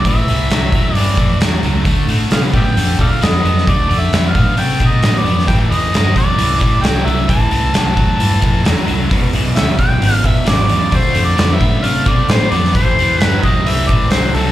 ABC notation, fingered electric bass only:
X:1
M:4/4
L:1/8
Q:1/4=132
K:Am
V:1 name="Fingered electric bass" clef=bass
A,,, C,, C,, E,, G,, F,, E,, ^C,, | D,, A,, C, A,, F,, D,, F,, F,, | D,, F,, F,, A,, C, B,, A,, F,, | A,,, E,, G,, E,, C,, A,,, C,, C,, |
A,,, C,, C,, E,, G,, F,, E,, C,, | E,,, B,,, D,, B,,, ^G,,, E,,, G,,, E,, | D,, F,, F,, A,, C, B,, A,, F,, | A,,, E,, G,, E,, C,, A,,, C,, C,, |]